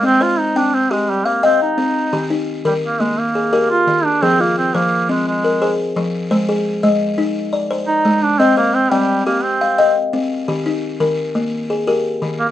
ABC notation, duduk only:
X:1
M:12/8
L:1/8
Q:3/8=115
K:Fdor
V:1 name="Duduk"
C F E D C A, G, B, C E3- | E z2 G, B, A, B,3 F2 D | C B, C B,2 A, A,3 z3 | z8 z E2 D |
C B, C G,2 B, C3 z3 | z8 z3 B, |]